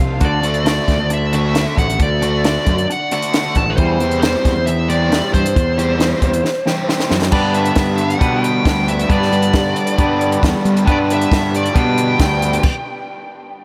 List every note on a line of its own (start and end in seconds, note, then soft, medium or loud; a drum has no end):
0.00 0.18 C2 medium
0.00 0.18 F3 medium
0.00 0.19 C4 medium
0.20 0.78 D2 medium
0.20 0.41 D3 medium
0.20 0.41 D4 medium
0.20 0.43 F#4 medium
0.20 kick medium
0.20 closed hi-hat medium
0.25 0.66 D5 medium
0.42 0.63 D3 medium
0.42 0.64 D3 medium
0.42 0.65 A3 medium
0.42 0.63 D4 medium
0.42 0.66 D4 medium
0.42 0.66 F#4 medium
0.42 closed hi-hat medium
0.54 closed hi-hat soft
0.65 0.86 D3 medium
0.65 0.95 D3 medium
0.65 0.95 A3 medium
0.65 0.86 D4 medium
0.65 0.96 D4 medium
0.65 0.96 F#4 medium
0.65 1.08 D5 medium
0.65 snare loud
0.65 closed hi-hat medium
0.88 1.65 D2 medium
0.88 1.08 D3 medium
0.88 1.08 D4 medium
0.88 kick medium
0.88 snare soft
0.88 closed hi-hat medium
1.10 1.31 D3 medium
1.10 1.31 D4 medium
1.10 1.33 E5 medium
1.10 closed hi-hat medium
1.32 1.53 D3 medium
1.32 1.55 D3 medium
1.32 1.55 A3 medium
1.32 1.55 D4 medium
1.32 1.53 D4 medium
1.32 1.55 F#4 medium
1.32 1.76 E5 medium
1.32 closed hi-hat medium
1.54 1.75 D3 medium
1.54 1.85 D3 medium
1.54 1.85 A3 medium
1.54 1.75 D4 medium
1.54 1.85 D4 medium
1.54 1.85 F#4 medium
1.54 snare loud
1.54 closed hi-hat medium
1.76 1.97 A1 medium
1.76 1.97 D3 medium
1.76 1.97 D4 medium
1.76 2.01 F#5 medium
1.76 kick medium
1.76 closed hi-hat medium
1.90 closed hi-hat medium
1.99 2.57 D2 medium
1.99 2.20 D3 medium
1.99 2.20 D4 medium
1.99 2.43 D5 medium
1.99 kick medium
1.99 closed hi-hat medium
2.22 2.42 D3 medium
2.22 2.45 D3 medium
2.22 2.45 A3 medium
2.22 2.42 D4 medium
2.22 2.45 D4 medium
2.22 2.45 F#4 medium
2.22 closed hi-hat medium
2.44 2.65 D3 medium
2.44 2.74 D3 medium
2.44 2.75 A3 medium
2.44 2.65 D4 medium
2.44 2.75 D4 medium
2.44 2.75 F#4 medium
2.44 2.87 D5 medium
2.44 snare loud
2.44 closed hi-hat medium
2.66 2.86 F#2 medium
2.66 2.88 D3 medium
2.66 2.88 D4 medium
2.66 kick medium
2.66 closed hi-hat medium
2.78 closed hi-hat medium
2.90 3.10 D3 medium
2.90 3.10 D4 medium
2.90 3.11 F#5 medium
2.90 closed hi-hat medium
3.11 3.32 D3 medium
3.11 3.33 D3 medium
3.11 3.34 A3 medium
3.11 3.34 D4 medium
3.11 3.32 D4 medium
3.11 3.34 F#4 medium
3.11 3.57 F#5 medium
3.11 closed hi-hat medium
3.22 closed hi-hat medium
3.33 3.54 D3 medium
3.33 3.63 D3 medium
3.33 3.63 A3 medium
3.33 3.54 D4 medium
3.33 3.63 D4 medium
3.33 3.63 F#4 medium
3.33 snare medium
3.33 closed hi-hat medium
3.55 3.75 A1 medium
3.55 3.76 D3 medium
3.55 3.77 D4 medium
3.55 3.71 A5 loud
3.55 kick medium
3.55 closed hi-hat medium
3.70 3.76 B4 medium
3.77 3.99 E2 medium
3.77 4.35 E2 medium
3.77 3.99 E3 medium
3.77 3.99 G3 medium
3.77 4.20 C5 medium
3.77 kick loud
3.77 closed hi-hat soft
4.00 4.21 E2 medium
4.00 4.21 E3 medium
4.00 4.22 E3 medium
4.00 4.22 G3 medium
4.00 4.23 C4 medium
4.00 4.23 G4 medium
4.00 closed hi-hat medium
4.11 closed hi-hat soft
4.21 4.43 E2 medium
4.21 4.52 E3 medium
4.21 4.43 E3 medium
4.21 4.52 G3 medium
4.21 4.52 C4 medium
4.21 4.52 G4 medium
4.21 4.67 C5 medium
4.21 snare loud
4.21 closed hi-hat medium
4.45 5.21 E2 medium
4.45 4.65 E2 medium
4.45 4.65 E3 medium
4.45 kick medium
4.45 snare soft
4.45 closed hi-hat medium
4.66 4.87 E2 medium
4.66 4.88 E3 medium
4.66 4.87 E5 medium
4.66 closed hi-hat medium
4.89 5.09 E2 medium
4.89 5.09 E3 medium
4.89 5.10 E3 medium
4.89 5.11 G3 medium
4.89 5.10 C4 medium
4.89 5.11 G4 medium
4.89 5.31 D5 medium
4.89 closed hi-hat medium
5.10 5.31 E2 medium
5.10 5.31 E3 medium
5.10 5.40 E3 medium
5.10 5.40 G3 medium
5.10 5.40 C4 medium
5.10 5.41 G4 medium
5.10 snare loud
5.10 closed hi-hat medium
5.33 5.53 E2 medium
5.33 5.53 G2 medium
5.33 5.53 E3 medium
5.33 6.85 C5 medium
5.33 kick medium
5.33 closed hi-hat medium
5.46 closed hi-hat medium
5.55 5.75 E2 medium
5.55 6.13 E2 medium
5.55 5.76 E3 medium
5.55 kick loud
5.55 closed hi-hat medium
5.78 5.98 E2 medium
5.78 5.98 E3 medium
5.78 5.99 E3 medium
5.78 6.00 G3 medium
5.78 5.99 C4 medium
5.78 6.00 G4 medium
5.78 closed hi-hat medium
5.99 6.19 E2 medium
5.99 6.20 E3 medium
5.99 6.29 E3 medium
5.99 6.29 G3 medium
5.99 6.29 C4 medium
5.99 6.29 G4 medium
5.99 snare loud
5.99 closed hi-hat medium
6.22 6.41 E2 medium
6.22 6.42 E2 medium
6.22 6.42 E3 medium
6.22 kick medium
6.22 closed hi-hat medium
6.33 closed hi-hat medium
6.44 6.64 E2 medium
6.44 6.64 E3 medium
6.44 snare medium
6.66 6.86 E2 medium
6.66 6.86 E3 medium
6.66 6.88 E3 medium
6.66 6.88 G3 medium
6.66 6.88 C4 medium
6.66 6.89 G4 medium
6.66 snare medium
6.87 7.08 E2 medium
6.87 7.09 E3 medium
6.87 7.18 E3 medium
6.87 7.18 G3 medium
6.87 7.18 C4 medium
6.87 7.18 G4 medium
6.87 snare medium
7.00 snare medium
7.09 7.30 E2 medium
7.09 7.30 F#2 medium
7.09 7.31 E3 medium
7.09 snare medium
7.22 snare medium
7.31 8.18 G2 medium
7.31 7.70 G2 medium
7.31 8.19 D3 medium
7.31 8.19 G3 medium
7.31 12.59 G3 medium
7.31 8.19 G3 medium
7.31 12.59 B3 medium
7.31 8.21 B3 medium
7.31 8.20 B3 medium
7.31 8.20 D4 medium
7.31 12.59 D4 medium
7.31 8.21 D4 medium
7.31 8.22 G4 medium
7.31 8.21 B4 loud
7.31 7.54 D5 medium
7.31 kick loud
7.31 crash loud
7.54 8.01 E5 medium
7.54 closed hi-hat medium
7.65 closed hi-hat medium
7.75 8.14 G2 medium
7.75 kick loud
7.75 snare loud
7.75 closed hi-hat medium
7.98 8.44 F#5 medium
7.98 closed hi-hat medium
8.10 closed hi-hat medium
8.18 9.08 G2 medium
8.18 8.59 B2 medium
8.18 9.08 D3 medium
8.18 9.08 G3 medium
8.18 9.10 G3 medium
8.18 9.11 B3 medium
8.18 9.10 B3 medium
8.18 9.09 D4 medium
8.18 9.11 D4 medium
8.18 9.10 B4 medium
8.18 kick loud
8.18 closed hi-hat medium
8.22 9.12 G4 medium
8.44 8.90 G5 loud
8.44 closed hi-hat medium
8.65 9.03 D2 medium
8.65 kick loud
8.65 snare loud
8.65 closed hi-hat medium
8.88 9.11 E5 medium
8.88 closed hi-hat medium
8.99 closed hi-hat medium
9.09 9.97 G2 medium
9.09 9.29 G2 medium
9.09 9.97 D3 medium
9.09 9.97 G3 medium
9.09 9.99 G3 medium
9.09 9.98 B3 medium
9.09 10.00 B3 medium
9.09 9.98 D4 medium
9.09 10.00 D4 medium
9.09 10.01 G4 loud
9.09 9.99 B4 loud
9.09 10.40 D5 medium
9.09 kick loud
9.09 closed hi-hat medium
9.22 snare soft
9.32 9.51 G2 medium
9.32 closed hi-hat medium
9.42 closed hi-hat medium
9.53 9.73 G2 medium
9.53 kick loud
9.53 snare loud
9.53 closed hi-hat medium
9.76 closed hi-hat medium
9.87 closed hi-hat medium
9.97 10.85 G2 medium
9.97 10.36 G2 medium
9.97 10.85 D3 medium
9.97 10.85 G3 medium
9.97 10.87 G3 medium
9.97 10.87 B3 medium
9.97 10.88 B3 medium
9.97 10.86 D4 medium
9.97 10.88 D4 medium
9.97 10.87 B4 medium
9.97 kick loud
9.97 closed hi-hat medium
10.02 10.89 G4 medium
10.21 closed hi-hat medium
10.32 closed hi-hat medium
10.43 10.52 E2 medium
10.43 kick loud
10.43 snare loud
10.43 closed hi-hat medium
10.65 10.84 G3 medium
10.65 closed hi-hat medium
10.77 closed hi-hat medium
10.85 11.73 G2 medium
10.85 11.25 G2 medium
10.85 11.74 D3 medium
10.85 11.72 G3 medium
10.85 11.74 G3 medium
10.85 11.74 B3 medium
10.85 11.75 B3 loud
10.85 11.73 D4 medium
10.85 11.75 D4 loud
10.85 11.74 B4 loud
10.85 kick loud
10.85 closed hi-hat medium
10.90 11.75 G4 medium
10.90 10.97 D5 medium
11.10 11.56 E5 medium
11.10 closed hi-hat medium
11.21 closed hi-hat medium
11.32 11.69 G2 medium
11.32 kick loud
11.32 snare loud
11.32 closed hi-hat medium
11.55 11.77 D5 medium
11.55 closed hi-hat medium
11.65 closed hi-hat medium
11.73 12.62 G2 medium
11.73 12.13 B2 medium
11.73 12.62 D3 medium
11.73 12.61 G3 medium
11.73 12.63 G3 medium
11.73 12.62 B3 medium
11.73 12.63 B3 medium
11.73 12.62 D4 medium
11.73 12.62 B4 medium
11.73 13.64 G5 medium
11.73 kick loud
11.73 closed hi-hat medium
11.78 12.64 D4 medium
11.78 12.64 G4 medium
11.98 closed hi-hat medium
12.20 12.57 D2 medium
12.20 kick loud
12.20 snare loud
12.20 closed hi-hat medium
12.42 closed hi-hat medium
12.53 closed hi-hat medium
12.63 kick loud
12.63 crash medium